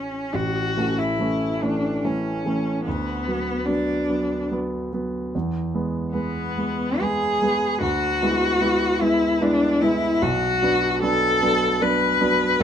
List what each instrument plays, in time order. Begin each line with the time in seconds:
Already playing: grand piano A1 E3 A3, cello C#4
0.34 grand piano A1, cello F#4
0.77 grand piano E3 A3 C#4
0.98 cello E4
1.19 grand piano E3 A3 C#4
1.62 grand piano E3 A3 C#4, cello D4
2.04 grand piano E3 A3 C#4, cello C#4
2.45 grand piano E3 A3 C#4
2.85 grand piano D2, cello B3
3.28 grand piano F#3 B3
3.65 grand piano F#3 B3, cello D4
4.09 grand piano F#3 B3
4.51 grand piano F#3 B3
4.93 grand piano F#3 B3
5.35 grand piano E2
5.74 grand piano G#3 B3
6.14 grand piano G#3 B3, cello B3
6.57 grand piano G#3 B3
7.01 grand piano G#3 B3, cello G#4
7.42 grand piano G#3 B3
7.80 grand piano D2, cello F#4
8.22 grand piano G#3 B3 E4
8.60 grand piano G#3 B3 E4
9.01 grand piano G#3 B3 E4, cello E4
9.41 grand piano G#3 B3 E4, cello D4
9.81 grand piano G#3 B3 E4, cello E4
10.22 grand piano B1, cello F#4
10.62 grand piano F#3 B3 D4
11.02 grand piano F#3 B3 D4, cello A4
11.42 grand piano F#3 B3 D4
11.81 grand piano F#3 B3 D4, cello B4
12.21 grand piano F#3 B3 D4
12.60 grand piano B1